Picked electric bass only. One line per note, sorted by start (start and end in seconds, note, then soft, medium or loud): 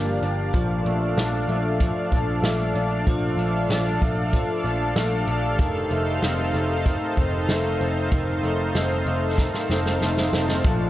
0.00 0.18 G1 medium
0.22 0.50 G1 medium
0.54 0.82 A#1 medium
0.85 1.13 A#1 medium
1.17 1.45 A#1 loud
1.48 1.90 A#1 medium
2.12 2.40 A#1 medium
2.43 2.71 A#1 medium
2.75 3.03 A#1 medium
3.07 3.35 A#1 medium
3.37 3.66 A#1 medium
3.70 3.97 A#1 medium
4.02 4.43 A#1 medium
4.64 4.92 A#1 medium
4.96 5.24 A#1 medium
5.27 5.59 A#1 medium
5.59 5.87 F1 medium
5.91 6.19 F1 medium
6.23 6.50 F1 medium
6.54 6.96 F1 medium
7.17 7.45 F1 medium
7.49 7.76 F1 medium
7.80 8.08 F1 medium
8.12 8.40 F1 medium
8.43 8.71 F1 medium
8.75 9.03 F1 medium
9.06 9.48 F1 medium
9.69 9.97 F1 medium
10.01 10.29 F1 medium
10.33 10.61 F1 medium
10.64 10.90 A#1 medium